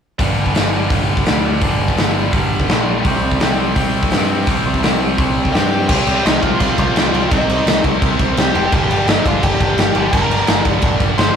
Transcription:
0.19 picked electric bass G1, distorted electric guitar G2 D3 G3, kick, open hi-hat
0.39 picked electric bass G1
0.46 kick
0.53 picked electric bass G1, distorted electric guitar G2 D3 G3, snare, open hi-hat
0.73 distorted electric guitar G2 D3 G3
0.89 picked electric bass G1, distorted electric guitar G2 D3 G3, kick, open hi-hat
1.17 kick
1.26 picked electric bass D2, distorted electric guitar G2 D3 G3, snare, open hi-hat
1.45 distorted electric guitar G2 D3 G3
1.61 picked electric bass G1, distorted electric guitar G2 D3 G3, kick, open hi-hat
1.80 picked electric bass G1
1.88 kick
1.97 picked electric bass G1, distorted electric guitar G2 D3 G3, snare, open hi-hat
2.16 distorted electric guitar G2 D3 G3
2.32 picked electric bass G1, distorted electric guitar G2 D3 G3, kick, open hi-hat
2.60 kick
2.69 picked electric bass A#1, distorted electric guitar G2 D3 G3, snare, open hi-hat
2.87 distorted electric guitar G2 D3 G3
3.05 picked electric bass C2, distorted electric guitar C3 G3 C4, kick, open hi-hat
3.23 picked electric bass C2
3.31 kick
3.40 picked electric bass C2, distorted electric guitar C3 G3 C4, snare, open hi-hat
3.58 distorted electric guitar C3 G3 C4
3.76 picked electric bass C2, distorted electric guitar C3 G3 C4, kick, open hi-hat
4.03 kick
4.11 picked electric bass G2, distorted electric guitar C3 G3, snare, open hi-hat
4.15 distorted electric guitar C4
4.31 distorted electric guitar C3 G3 C4
4.46 picked electric bass C2, distorted electric guitar C3 G3 C4, kick, open hi-hat
4.66 picked electric bass C2
4.74 kick
4.83 picked electric bass C2, distorted electric guitar C3 G3 C4, snare, open hi-hat
5.00 distorted electric guitar C3 G3 C4
5.17 picked electric bass C2, distorted electric guitar C3 G3 C4, kick, open hi-hat
5.45 kick
5.52 picked electric bass G2, distorted electric guitar C3 G3 C4, lead electric guitar G4 G5, snare, open hi-hat
5.70 distorted electric guitar C3 G3 C4
5.87 picked electric bass C2, distorted electric guitar C3 G3 C4, lead electric guitar G4 G5, kick, crash
6.07 picked electric bass C2, crash
6.25 picked electric bass C2, lead electric guitar D#4 D#5, snare, crash
6.42 picked electric bass C2, lead electric guitar F4 F5, kick, crash
6.60 picked electric bass C2, lead electric guitar F4 F5, kick, crash
6.78 picked electric bass C2, kick, crash
6.96 picked electric bass C2, snare, crash
7.13 picked electric bass C2, distorted electric guitar C3 G3 C4, crash
7.30 picked electric bass C2, distorted electric guitar C3 G3 C4, lead electric guitar D#4 D#5, kick, crash
7.48 picked electric bass C2, crash
7.66 picked electric bass C2, snare, crash
7.84 picked electric bass C2, kick, crash
8.02 picked electric bass C2, kick, crash
8.19 picked electric bass C2, kick, crash
8.37 picked electric bass C2, lead electric guitar G4, snare, crash
8.42 lead electric guitar G5
8.54 picked electric bass F1, distorted electric guitar C3 G3 C4, crash
8.72 picked electric bass G1, distorted electric guitar G2 D3 G3, lead electric guitar G4, kick, crash
8.76 lead electric guitar G5
8.88 picked electric bass G1, crash
9.06 picked electric bass G1, lead electric guitar D#4 D#5, snare, crash
9.25 picked electric bass G1, lead electric guitar F4 F5, kick, crash
9.43 picked electric bass G1, lead electric guitar G4 G5, kick, crash
9.60 picked electric bass G1, kick, crash
9.77 picked electric bass G1, snare, crash
9.94 picked electric bass G1, distorted electric guitar G2 D3 G3, crash
10.13 picked electric bass G1, distorted electric guitar G2 D3 G3, lead electric guitar A#4 A#5, kick, crash
10.30 picked electric bass G1, crash
10.47 picked electric bass G1, snare, crash
10.65 picked electric bass G1, kick, crash
10.82 picked electric bass G1, kick, crash
11.00 picked electric bass G1, kick, crash
11.18 picked electric bass G1, lead electric guitar C5 C6, snare, crash

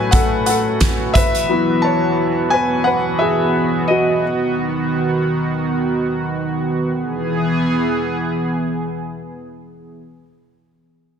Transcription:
Already playing: analog synth pad A2 A3 F#4, grand piano F#3 A3 F#4 A4 B4 C#5 F#5 G#5 A5
0.11 grand piano A4 F#5, kick, closed hi-hat
0.46 grand piano A4 F#5, closed hi-hat
0.80 kick, snare, closed hi-hat
1.14 analog synth pad E3 B3, grand piano B4 E5, kick, closed hi-hat
1.35 closed hi-hat
1.49 grand piano F#3 B3 E4
1.82 grand piano C#5 A5
2.50 grand piano B4 G#5
2.84 grand piano B4 F#5
3.19 grand piano G#4 E5
3.88 grand piano F#4 D#5
4.22 analog synth pad D#3
6.96 analog synth pad E3 B3 G#4

